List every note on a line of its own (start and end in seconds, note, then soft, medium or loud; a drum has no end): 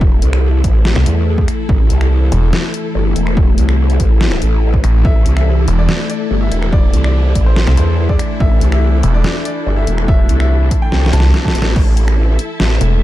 0.00 0.21 E1 loud
0.00 11.72 E3 medium
0.00 11.72 A3 medium
0.00 5.01 E4 medium
0.00 13.03 E4 medium
0.00 13.03 A4 medium
0.00 kick loud
0.22 0.63 C2 loud
0.22 closed hi-hat medium
0.33 finger snap medium
0.64 0.94 A1 loud
0.64 kick medium
0.64 closed hi-hat medium
0.85 snare loud
0.96 1.05 C2 loud
0.96 finger snap medium
1.06 1.47 E2 medium
1.06 closed hi-hat medium
1.38 kick medium
1.48 finger snap medium
1.48 closed hi-hat medium
1.69 1.88 A1 loud
1.69 kick loud
1.90 2.30 C2 loud
1.90 closed hi-hat medium
2.01 finger snap medium
2.32 2.51 E1 loud
2.32 closed hi-hat medium
2.53 snare loud
2.74 closed hi-hat medium
2.95 3.14 G1 loud
3.16 3.56 E1 loud
3.16 closed hi-hat medium
3.27 finger snap medium
3.37 kick loud
3.58 3.98 C2 loud
3.58 closed hi-hat medium
3.69 finger snap medium
3.90 closed hi-hat soft
4.00 4.40 A1 loud
4.00 kick medium
4.00 closed hi-hat medium
4.21 snare loud
4.32 finger snap medium
4.42 4.82 A1 loud
4.42 closed hi-hat medium
4.74 kick medium
4.84 5.03 A1 loud
4.84 finger snap medium
4.84 closed hi-hat medium
5.05 5.24 A1 medium
5.05 11.72 D4 medium
5.05 5.32 E5 loud
5.05 kick loud
5.26 5.66 C2 loud
5.26 closed hi-hat medium
5.37 5.72 E5 medium
5.37 finger snap medium
5.68 5.87 E1 loud
5.68 closed hi-hat medium
5.79 6.05 D5 loud
5.89 snare loud
6.10 6.37 D5 medium
6.10 closed hi-hat medium
6.31 6.50 G1 loud
6.42 6.68 E5 medium
6.52 6.92 E1 loud
6.52 closed hi-hat medium
6.63 finger snap medium
6.73 7.00 D5 loud
6.73 kick loud
6.94 7.34 C2 loud
6.94 closed hi-hat medium
7.04 7.40 D5 loud
7.04 finger snap medium
7.35 7.66 A1 loud
7.35 kick medium
7.35 closed hi-hat medium
7.46 7.73 C5 medium
7.56 snare loud
7.67 7.76 C2 loud
7.67 finger snap medium
7.77 8.18 E2 loud
7.77 8.04 C5 medium
7.77 closed hi-hat medium
8.09 8.36 D5 medium
8.09 kick medium
8.19 finger snap medium
8.19 closed hi-hat medium
8.40 8.60 A1 loud
8.40 8.67 E5 loud
8.40 kick loud
8.61 9.02 C2 loud
8.61 closed hi-hat medium
8.72 9.08 E5 loud
8.72 finger snap medium
9.03 9.23 E1 loud
9.03 closed hi-hat medium
9.14 9.41 D5 loud
9.24 snare loud
9.45 9.72 D5 medium
9.45 closed hi-hat medium
9.66 9.86 G1 loud
9.77 10.04 E5 loud
9.87 10.28 E1 loud
9.87 closed hi-hat medium
9.98 finger snap medium
10.08 10.35 E5 loud
10.08 kick loud
10.29 10.70 C2 loud
10.29 closed hi-hat medium
10.40 10.75 E5 medium
10.40 finger snap medium
10.71 kick medium
10.71 closed hi-hat medium
10.82 11.09 G5 loud
10.92 11.12 C2 loud
10.92 snare medium
11.06 snare medium
11.13 11.32 C2 loud
11.13 11.40 A5 loud
11.13 closed hi-hat medium
11.20 snare medium
11.34 snare medium
11.45 11.72 A5 medium
11.45 kick medium
11.45 snare loud
11.55 11.74 A1 loud
11.55 closed hi-hat medium
11.62 snare loud
11.76 12.37 A1 loud
11.76 13.03 E3 medium
11.76 13.03 A3 medium
11.76 13.03 E4 medium
11.76 kick loud
11.76 crash loud
11.97 closed hi-hat medium
12.08 finger snap medium
12.14 13.03 A5 medium
12.20 13.03 E5 medium
12.39 closed hi-hat medium
12.60 12.79 A1 loud
12.60 snare loud
12.81 13.03 E1 loud
12.81 closed hi-hat medium